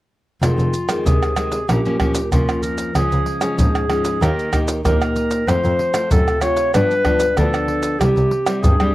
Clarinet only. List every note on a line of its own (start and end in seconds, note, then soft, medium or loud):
0.42 1.07 F4 medium
1.06 1.70 G#4 medium
1.68 2.31 G4 medium
2.32 2.64 F4 medium
2.63 2.95 A#4 medium
2.96 3.55 G#4 loud
3.58 4.24 G#4 medium
4.22 4.58 A#4 loud
4.85 5.49 A#4 loud
5.48 6.11 C5 loud
6.11 6.43 A4 loud
6.42 6.73 C#5 loud
6.74 7.39 B4 loud
7.37 8.01 A4 loud
8.00 8.64 G4 medium
8.63 8.95 G#4 medium